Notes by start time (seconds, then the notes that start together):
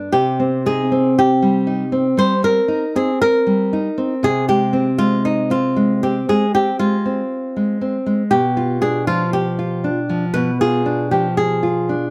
Already playing: D4
0.12 C3 G4
0.40 C4
0.66 D#4 G#4
0.92 C4
1.19 G4
1.42 G3
1.67 D#4
1.92 C4
2.17 G3 C5
2.43 C4 A#4
2.68 D#4
2.96 C4 G#4
3.21 A#4
3.47 G3
3.73 D#4
3.98 C4
4.23 C3 G#4
4.48 G#3 G4
4.73 C4
4.98 G#3 F4
5.25 D#4
5.50 C4 F4
5.76 G#3
6.03 C4 G4
6.29 G#3 G#4
6.55 C4 G4
6.79 G#3 F4
7.06 C4
7.57 G#3
7.81 C4
8.06 G#3
8.31 B2 G4
8.57 F4
8.82 D4 G#4
9.07 F3 F4
9.33 G4
9.59 F4
9.84 D4
10.09 F3
10.34 B2 B4
10.61 F4 G#4
10.86 D4
11.11 F3 G4
11.37 G#4
11.63 F4
11.89 D4